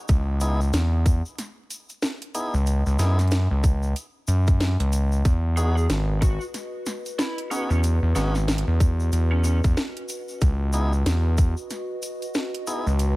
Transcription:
0.08 C#2, kick, closed hi-hat, shaker
0.40 B3 D#4 E4 G#4, closed hi-hat, shaker
0.61 shaker
0.73 E2, snare, closed hi-hat, shaker
1.06 kick, closed hi-hat, shaker
1.25 shaker
1.38 snare, closed hi-hat, shaker
1.70 closed hi-hat, shaker
1.89 closed hi-hat, shaker
2.02 snare, shaker
2.22 closed hi-hat
2.35 B3 D#4 E4 G#4, closed hi-hat, shaker
2.54 C#2, shaker
2.66 closed hi-hat, shaker
2.86 C#2, shaker
2.99 F#2 B3 D#4 E4 G#4, snare, closed hi-hat, shaker
3.19 snare, closed hi-hat, shaker
3.21 closed hi-hat
3.28 closed hi-hat, shaker
3.32 snare, closed hi-hat
3.51 C#2
3.64 kick, closed hi-hat, shaker
3.83 shaker
3.96 closed hi-hat, shaker
4.28 F#2, closed hi-hat, shaker
4.47 kick, closed hi-hat, shaker
4.60 snare, shaker
4.80 C#2, closed hi-hat
4.92 closed hi-hat, shaker
5.12 shaker
5.25 E2 F#4, kick, closed hi-hat, shaker
5.46 B4
5.57 B3 D#4 F#4 G#4, closed hi-hat, shaker
5.77 G#4, shaker
5.87 G#1 D#5, snare, closed hi-hat, shaker
6.22 F#4, kick, closed hi-hat, shaker
6.41 shaker
6.54 snare, closed hi-hat, shaker
6.86 snare, closed hi-hat, shaker
7.06 closed hi-hat, shaker
7.19 E4, snare, shaker
7.38 closed hi-hat
7.51 B3 C#4 D#4 F#4 G#4, closed hi-hat, shaker
7.70 E2 C#4, shaker
7.83 closed hi-hat, shaker
8.02 E2
8.15 G#1 B3 C#4 D#4 F#4 G#4, snare, closed hi-hat, shaker
8.35 snare, shaker
8.48 snare, shaker
8.58 closed hi-hat
8.67 E2
8.80 kick, closed hi-hat, shaker
9.00 shaker
9.12 E2, closed hi-hat, shaker
9.32 C#4
9.44 C#4, closed hi-hat, shaker
9.64 E2, kick, closed hi-hat, shaker
9.77 snare, shaker
9.97 closed hi-hat
10.08 closed hi-hat, shaker
10.28 shaker
10.41 C#2, kick, closed hi-hat, shaker
10.73 B3 D#4 E4 G#4, closed hi-hat, shaker
10.93 shaker
11.06 E2, snare, closed hi-hat, shaker
11.38 kick, closed hi-hat, shaker
11.57 shaker
11.70 snare, closed hi-hat, shaker
12.02 closed hi-hat, shaker
12.22 closed hi-hat, shaker
12.34 snare, shaker
12.54 closed hi-hat
12.67 B3 D#4 E4 G#4, closed hi-hat, shaker
12.87 C#2, shaker
12.99 closed hi-hat, shaker

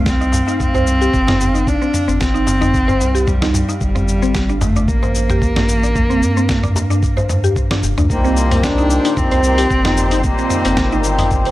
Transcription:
Already playing: C2 C4 F5
0.06 C4, kick, snare, shaker
0.21 D#4, shaker
0.32 darbuka tek, darbuka dum, shaker
0.47 D#4, darbuka ka, shaker
0.60 C4, kick, mid tom, shaker
0.74 C2 C5, darbuka tek, darbuka dum, shaker
0.87 shaker
1.01 G4, shaker
1.14 G1, kick, shaker
1.27 D#4, snare, mid tom, darbuka ka, darbuka tek, darbuka dum, shaker
1.41 shaker
1.55 D#4, shaker
1.67 D4, kick, shaker
1.82 C4, shaker
1.94 mid tom, shaker
2.08 G1 C4, shaker
2.21 C4, kick, snare, shaker
2.34 D#4, shaker
2.47 darbuka tek, darbuka dum, shaker
2.61 D#4, mid tom, darbuka ka, shaker
2.74 kick, shaker
2.88 C5, darbuka ka, darbuka tek, darbuka dum, shaker
3.00 C2, darbuka tek, shaker
3.15 G4, shaker
3.27 G3, kick, mid tom, shaker
3.42 D#4, snare, darbuka tek, shaker
3.54 darbuka dum, shaker
3.69 D#4, darbuka tek, shaker
3.81 G1 G3, kick, shaker
3.95 C4, mid tom, shaker
4.08 shaker
4.22 C4, shaker
4.35 kick, snare, shaker
4.49 D4, shaker
4.61 A3, mid tom, darbuka tek, darbuka dum, shaker
4.76 D4, darbuka ka, shaker
4.88 A1 A#3, kick, shaker
5.03 C5, darbuka tek, darbuka dum, shaker
5.15 shaker
5.30 G4, mid tom, shaker
5.42 kick, shaker
5.56 D4, snare, darbuka ka, darbuka tek, darbuka dum, shaker
5.69 shaker
5.83 D4, shaker
5.95 kick, mid tom, shaker
6.10 C4, shaker
6.23 G2, shaker
6.37 C4, shaker
6.49 kick, snare, shaker
6.63 D4, mid tom, shaker
6.76 darbuka tek, darbuka dum, shaker
6.90 D4, darbuka ka, shaker
7.03 kick, shaker
7.17 C5, darbuka ka, darbuka tek, darbuka dum, shaker
7.29 mid tom, darbuka tek, shaker
7.44 G4, shaker
7.56 kick, shaker
7.71 D4, snare, darbuka tek, shaker
7.83 F1, darbuka ka, darbuka dum, shaker
7.98 D2 D4, mid tom, darbuka tek, shaker
8.08 C2 A#2 D#3 G3 A#3 C4 G4 C5, kick, shaker
8.12 C4
8.24 C4, shaker
8.37 shaker
8.51 C4, closed hi-hat, mid tom, shaker
8.63 D4, kick, snare, shaker
8.78 D#4, shaker
8.90 shaker
9.05 D#4, closed hi-hat, shaker
9.17 C4, kick, mid tom, shaker
9.31 C2 C5, closed hi-hat, shaker
9.43 A#2 D#3 G3 C4, shaker
9.58 G4, closed hi-hat, shaker
9.70 G1 A#2 D#3 G3 C4, kick, shaker
9.85 D#4, snare, closed hi-hat, mid tom, shaker
9.97 shaker
10.11 D#4, closed hi-hat, shaker
10.23 A#2 D#3 G3 A#3 C4, kick, shaker
10.38 C4, shaker
10.50 mid tom, shaker
10.65 G1 C4, closed hi-hat, shaker
10.77 kick, snare, shaker
10.92 D#4, shaker
11.04 shaker
11.19 D#4, closed hi-hat, mid tom, shaker
11.31 kick, shaker
11.45 C5, closed hi-hat, shaker

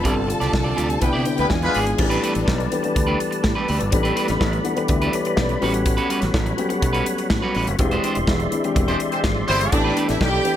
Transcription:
0.03 G1 C3 D3 G3 C4 D4 F4 G4 A4 D5 A5, kick, closed hi-hat
0.16 muted clean electric guitar stroke
0.27 muted clean electric guitar stroke, closed hi-hat
0.40 C2 C4 F4 G4 D5, snare, closed hi-hat
0.52 C2, muted clean electric guitar stroke, kick, snare
0.64 C4 F4 G4 D5
0.76 D2 C4 F4 G4 D5, closed hi-hat
0.90 muted clean electric guitar stroke, closed hi-hat
1.00 C2 C3 D3 G3 B3 C4 E4 G4 B4 G5, muted clean electric guitar stroke, kick, closed hi-hat
1.13 C3 B3 E4 G4 D5
1.25 D3 B3 C4 D4, muted clean electric guitar stroke, closed hi-hat
1.38 D2 G3 B3 E4 B4, muted clean electric guitar stroke, closed hi-hat
1.50 E2 E3 G#3 D4 F4 G#4 G#5, kick, snare
1.62 G#3 B3 F4 B4, muted clean electric guitar stroke, closed hi-hat
1.74 G#1 B3 F4 G#4 D5, open hi-hat
1.86 muted clean electric guitar stroke, closed hi-hat
1.98 A1 E3 G3 A3 B3 D4 G4 B4 D5 A5, muted clean electric guitar stroke, kick, crash
2.10 A3 D4 G4 B4, closed hi-hat
2.23 A3 D4 G4 B4, closed hi-hat
2.35 A1, muted clean electric guitar stroke, closed hi-hat
2.46 B1, muted clean electric guitar stroke, kick, snare
2.58 muted clean electric guitar stroke, closed hi-hat
2.71 E3 A3 B3 D4 G4, closed hi-hat
2.83 E3 A3 B3 D4 G4, muted clean electric guitar stroke, closed hi-hat
2.95 D2, muted clean electric guitar stroke, kick, closed hi-hat
3.07 A3 D4 G4 B4
3.19 muted clean electric guitar stroke, closed hi-hat
3.31 muted clean electric guitar stroke, closed hi-hat
3.43 A2, muted clean electric guitar stroke, kick, snare
3.55 A3 D4 G4 B4
3.68 D2 A3 D4 G4 B4, open hi-hat
3.80 G1, muted clean electric guitar stroke, closed hi-hat
3.91 A1 E3 A3 B3 D4 G4 B5, muted clean electric guitar stroke, kick, closed hi-hat
4.03 A3 D4 G4 B4, closed hi-hat
4.15 A3 D4 G4 B4, closed hi-hat
4.28 A1, muted clean electric guitar stroke, snare, closed hi-hat
4.40 A1, muted clean electric guitar stroke, kick, snare
4.52 muted clean electric guitar stroke, closed hi-hat
4.63 E3 A3 B3 D4 A4 F#5, closed hi-hat
4.75 E3 A3 B3 D4 G4, muted clean electric guitar stroke, closed hi-hat
4.88 D2 E5, muted clean electric guitar stroke, kick, closed hi-hat
5.02 A3 D4 G4 B4, closed hi-hat
5.12 B3 G4 C#5, muted clean electric guitar stroke, closed hi-hat
5.25 muted clean electric guitar stroke, closed hi-hat
5.37 B1 C#4 A4 D5, muted clean electric guitar stroke, kick, snare
5.49 muted clean electric guitar stroke, closed hi-hat
5.61 A1 G3 A3 B3 C#4 F#4 G4 B4 C#5 F#5, open hi-hat
5.74 muted clean electric guitar stroke, closed hi-hat
5.86 muted clean electric guitar stroke, kick, closed hi-hat
5.97 G3 C#4 F#4 B4, closed hi-hat
6.09 G3 C#4 F#4 B4, closed hi-hat
6.21 A1, muted clean electric guitar stroke, snare, closed hi-hat
6.34 A1, muted clean electric guitar stroke, kick, snare
6.46 muted clean electric guitar stroke, closed hi-hat
6.57 F#3 A3 B3 C#4 G4, closed hi-hat
6.69 A3 B3 C#4 F#4 G4, muted clean electric guitar stroke, closed hi-hat
6.82 B1, muted clean electric guitar stroke, kick, closed hi-hat
6.93 G3 C#4 F#4 B4, closed hi-hat
7.06 muted clean electric guitar stroke, closed hi-hat
7.18 muted clean electric guitar stroke, closed hi-hat
7.30 A2, muted clean electric guitar stroke, kick, snare
7.42 G3 C#4 F#4 B4
7.55 A1 G3 C#4 F#4 B4, open hi-hat
7.67 F#1, muted clean electric guitar stroke, closed hi-hat
7.79 E1 E3 G3 G#3 C4 D4 G4 D5 E5 C6, muted clean electric guitar stroke, kick, closed hi-hat
7.84 G#3
7.91 G#3 D4 G4 C5, closed hi-hat
8.03 G#3 D4 G4 C5, closed hi-hat
8.15 E1, muted clean electric guitar stroke, closed hi-hat
8.27 E1, muted clean electric guitar stroke, kick, snare
8.39 muted clean electric guitar stroke, closed hi-hat
8.51 E3 G#3 C4 D4 E4, closed hi-hat
8.63 E3 G#3 C4 D4 G4, muted clean electric guitar stroke, closed hi-hat
8.75 E1, muted clean electric guitar stroke, kick, closed hi-hat
8.88 G#3 C4 D4 G4 C5, closed hi-hat
9.00 muted clean electric guitar stroke, closed hi-hat
9.12 G#3 C4 G4 C5, muted clean electric guitar stroke, closed hi-hat
9.23 G#1, muted clean electric guitar stroke, kick, snare
9.36 muted clean electric guitar stroke
9.48 G1 G3 G#3 C4 D4 E4 G4 C5, open hi-hat
9.61 muted clean electric guitar stroke, closed hi-hat
9.72 A1 E3 A3 B3 D4 G4 A4 D5 G5 B5, muted clean electric guitar stroke, kick, closed hi-hat
9.84 A3 D4 G4 B4
9.96 A3 D4 G4 B4, closed hi-hat
10.08 A1 E4 E5, muted clean electric guitar stroke, snare, closed hi-hat
10.21 B1 G4 G5, muted clean electric guitar stroke, kick, snare
10.33 muted clean electric guitar stroke
10.44 E3 A3 B3 D4 G4, closed hi-hat

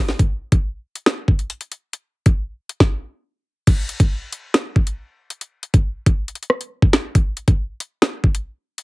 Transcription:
0.09 snare
0.19 kick, closed hi-hat
0.52 kick, closed hi-hat
0.95 closed hi-hat
1.06 finger snap, snare, closed hi-hat
1.28 kick
1.39 closed hi-hat
1.50 closed hi-hat
1.61 closed hi-hat
1.72 closed hi-hat
1.93 closed hi-hat
2.26 kick, closed hi-hat
2.69 closed hi-hat
2.80 kick, snare
3.67 kick, closed hi-hat, crash
3.89 closed hi-hat
4.00 kick, closed hi-hat
4.32 closed hi-hat
4.54 finger snap, snare, closed hi-hat
4.76 kick
4.87 closed hi-hat
5.30 closed hi-hat
5.41 closed hi-hat
5.63 closed hi-hat
5.74 kick, closed hi-hat
6.06 kick, closed hi-hat
6.28 closed hi-hat
6.35 closed hi-hat
6.43 closed hi-hat
6.50 cross-stick
6.61 closed hi-hat
6.82 kick
6.93 finger snap, snare
7.15 kick, closed hi-hat
7.37 closed hi-hat
7.48 kick, closed hi-hat
7.80 closed hi-hat
8.02 finger snap, snare, closed hi-hat
8.24 kick
8.35 closed hi-hat
8.78 closed hi-hat

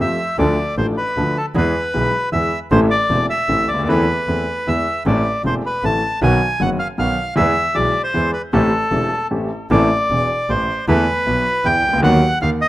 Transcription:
0.00 F2 F3 A3 C4 G4 E5
0.38 D2 D3 F3 A3 D4 A4 D5
0.77 A1 A2 F3 A3 D4 A4 C5
0.97 B4
1.16 D2 D3 F3 A3 D4 A4
1.37 A4
1.55 E2 E3 G#3 B3 G#4 B4
1.94 B1 B2 E3 G#3 B3 G#4
2.32 E2 E3 G#3 B3 G#4 E5
2.71 A1 A2 E3 A3 C4 A4 C5
2.90 D5
3.10 E1 E2 E3 A3 C4 A4
3.30 E5
3.49 A1 A2 E3 A3 C4 A4
3.68 D2 D5
3.74 C#2
3.79 D2
3.83 D#2
3.88 E2 E3 A3 C4 A4 B4
4.28 E2 E3 A3 C4 A4
4.67 E2 E3 G#3 B3 G#4 E5
5.06 A1 A2 E3 A3 C4 A4 D5
5.44 E1 E2 E3 A3 C4 A4 C5
5.66 B4
5.83 A1 A2 E3 A3 C4 A4 A5
6.22 B1 B2 D#3 F#3 B3 F#4 G#5
6.60 F#1 F#2 D#3 F#3 B3 F#4 F#5
6.79 F5
6.98 B1 B2 D#3 F#3 B3 F#4 F5
7.36 E2 E3 G#3 B3 G#4 E5
7.74 B1 B2 E3 G#3 B3 G#4 D5
8.04 C5
8.14 E2 E3 G#3 B3 G#4
8.33 B4
8.53 A1 A2 E3 A3 C4 G4 A4
8.91 E1 E2 E3 A3 C4 G4
9.31 A1 A2 E3 A3 C4 G4
9.71 A1 A2 E3 A3 C4 A4 D5
10.10 E1 E2
10.49 A1 A2 C5
10.88 E2 E3 A3 B3 A4 B4
11.27 B1 B2
11.65 E2 E3 G5
11.84 C2 C#2
11.93 C#2
11.98 D2
12.02 D#2 D#3 F#3 B3 F#4 F#5
12.41 D#2 D#3 F5
12.62 D#5

